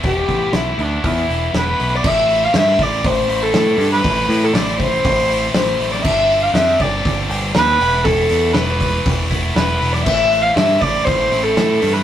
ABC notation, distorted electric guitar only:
X:1
M:4/4
L:1/8
Q:1/4=120
K:Am
V:1 name="Distorted electric guitar"
[E,A,B,E] [A,B,E] [E,A,B,E] [A,B,E] [E,A,B,E] [A,B,E] [E,A,B,E]2 | [A,,E,A,CE] [A,CE] [E,A,CE]3 [A,CE] [A,,E,A,CE] [A,CE] | [A,,E,A,CE] [A,CE] [E,A,CE]3 [A,CE] [A,,E,A,CE] [A,CE] | [G,,D,G,CD] [G,CD] [D,G,CD]3 [G,CD] [G,,D,G,CD] [E,A,B,E] |
[E,A,B,E] [A,B,E] [E,A,B,E]3 [A,B,E] [E,A,B,E] [A,B,E] | [A,,E,A,CE] [A,CE] [E,A,CE]3 [A,CE] [A,,E,A,CE] [A,CE] |]